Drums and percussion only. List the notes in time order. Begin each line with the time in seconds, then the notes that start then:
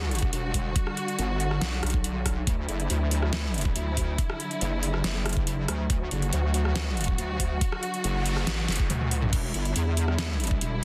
0.11 closed hi-hat
0.15 closed hi-hat
0.19 kick, closed hi-hat
0.33 closed hi-hat
0.54 kick, open hi-hat
0.76 kick, closed hi-hat
0.87 cross-stick
0.97 closed hi-hat
1.08 closed hi-hat
1.19 closed hi-hat
1.40 open hi-hat
1.51 cross-stick
1.61 snare, closed hi-hat
1.83 cross-stick, closed hi-hat
1.86 closed hi-hat
1.90 kick, closed hi-hat
2.04 closed hi-hat
2.26 kick, cross-stick, open hi-hat
2.47 kick, closed hi-hat
2.69 closed hi-hat
2.80 closed hi-hat
2.90 closed hi-hat
3.11 open hi-hat
3.22 cross-stick
3.33 snare, closed hi-hat
3.54 closed hi-hat
3.58 closed hi-hat
3.61 closed hi-hat
3.65 kick
3.76 closed hi-hat
3.97 kick, open hi-hat
4.18 kick, closed hi-hat
4.30 cross-stick
4.40 closed hi-hat
4.51 closed hi-hat
4.61 closed hi-hat
4.83 open hi-hat
4.94 cross-stick
5.04 snare, closed hi-hat
5.26 cross-stick, closed hi-hat
5.29 closed hi-hat
5.33 kick, closed hi-hat
5.47 closed hi-hat
5.68 cross-stick, open hi-hat
5.90 kick, closed hi-hat
6.11 closed hi-hat
6.22 closed hi-hat
6.33 closed hi-hat
6.54 open hi-hat
6.65 cross-stick
6.76 snare, closed hi-hat
6.97 closed hi-hat
7.01 closed hi-hat
7.04 closed hi-hat
7.08 kick
7.18 closed hi-hat
7.40 kick, open hi-hat
7.61 kick, closed hi-hat
7.72 cross-stick
7.83 closed hi-hat
7.94 closed hi-hat
8.04 closed hi-hat
8.26 open hi-hat
8.37 cross-stick
8.47 snare, closed hi-hat
8.68 snare, closed hi-hat
8.72 closed hi-hat
8.76 kick, closed hi-hat
8.90 closed hi-hat, mid tom
9.01 mid tom
9.11 open hi-hat
9.22 mid tom
9.33 kick, closed hi-hat, crash
9.54 closed hi-hat
9.65 closed hi-hat
9.76 closed hi-hat
9.97 open hi-hat
10.08 cross-stick
10.19 snare, closed hi-hat
10.40 closed hi-hat
10.44 closed hi-hat
10.47 kick, closed hi-hat
10.61 closed hi-hat